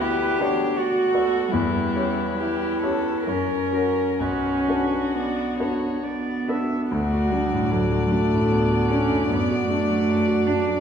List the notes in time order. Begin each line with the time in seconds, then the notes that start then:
Already playing: D2 B3 F#4 D5
0.01 E4 G4 B4
0.40 B3 D4 F#4 C#5 D5
0.77 F#4 D5
1.14 B3 F#4 A4 D5
1.51 E2 G3 E4 B4
1.95 C#4 G4 C#5
2.39 E4 G4
2.82 C#4 G4 A4 C#5
3.25 F#2 C#4 A#4
3.72 C#4 F#4 A#4
4.19 B1 C#4 F#4 B4
4.68 D4 F#4 B4
5.14 B3 D5
5.59 D4 F#4 B4 C#5
6.03 B3 D5
6.48 D4 F#4 B4 E5
6.91 D2 A3 F#4 D5
7.13 F#4
7.32 G3 D4
7.53 A2
7.70 D2 F#3 A4
7.92 F#4
8.10 A3 D4
8.33 A2
8.50 D2 B3
8.72 F#4
8.89 C#4 D4
9.11 A2
9.29 F#2 B3 D5
9.51 F#4
9.68 A3 D4
9.89 F#3
10.08 F#2
10.28 F#4
10.47 D4
10.69 F#3